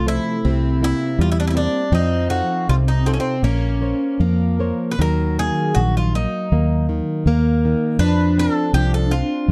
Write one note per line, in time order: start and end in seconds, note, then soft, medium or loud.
0.00 0.18 C2 medium
0.00 0.42 C3 medium
0.00 0.48 A3 medium
0.06 0.37 F3 soft
0.06 0.83 E4 medium
0.06 0.36 A4 soft
0.06 0.37 C5 soft
0.45 0.93 C2 medium
0.45 1.16 C3 medium
0.45 1.91 C4 medium
0.82 1.41 A#3 soft
0.82 1.41 C4 soft
0.82 1.41 E4 soft
0.82 1.19 E4 medium
1.19 1.67 E2 medium
1.19 1.90 G3 medium
1.19 1.30 F4 medium
1.32 1.39 E4 medium
1.40 1.47 D4 medium
1.47 1.49 E4 medium
1.47 1.56 E4 medium
1.54 1.84 A#3 soft
1.54 1.84 C4 soft
1.54 1.94 D4 medium
1.54 1.85 E4 medium
1.92 2.41 F2 loud
1.92 2.66 F3 medium
1.92 3.44 C4 medium
1.92 2.28 D#4 medium
2.30 2.90 D#4 soft
2.30 2.69 F#4 medium
2.30 2.91 A4 medium
2.30 2.90 F5 soft
2.69 3.17 C2 medium
2.69 3.41 C3 medium
2.69 2.74 F4 medium
2.88 3.07 D#4 medium
3.06 3.13 C4 medium
3.06 3.35 D#4 soft
3.06 3.36 F4 soft
3.06 3.36 A4 medium
3.13 3.19 C#4 medium
3.20 3.44 C4 medium
3.42 3.92 A#1 medium
3.42 4.17 A#3 medium
3.42 4.55 A#3 medium
3.42 4.22 C#4 loud
3.81 4.44 A#4 soft
3.81 4.44 C5 soft
3.81 4.44 C#5 soft
4.20 4.71 F2 medium
4.20 4.97 F3 medium
4.20 4.95 A#3 medium
4.59 4.91 A#4 soft
4.59 4.91 C5 soft
4.59 4.92 C#5 medium
4.91 4.99 B4 medium
4.99 5.49 D#2 medium
4.99 5.77 D#3 medium
4.99 7.33 F#3 medium
4.99 5.39 A#4 medium
5.39 5.76 A#3 soft
5.39 5.78 G#4 medium
5.75 6.25 A#1 medium
5.75 6.14 D#3 medium
5.75 5.95 F#4 medium
5.97 6.15 F4 medium
6.15 6.51 A#3 medium
6.15 6.86 D#4 medium
6.52 7.00 D#2 medium
6.52 7.26 A#3 medium
6.89 7.25 D#3 medium
7.26 7.74 D#2 medium
7.26 7.63 A#3 medium
7.26 7.97 A#3 medium
7.65 8.00 D#3 medium
7.99 8.47 F2 loud
7.99 8.74 F3 medium
7.99 9.52 D4 loud
7.99 8.38 B4 medium
8.38 8.73 C4 medium
8.38 8.74 A4 medium
8.73 9.22 C2 loud
8.73 9.10 F3 soft
8.73 8.91 G4 medium
8.94 9.12 A4 medium
9.11 9.48 C4 medium
9.11 9.52 F4 medium
9.48 9.52 F2 medium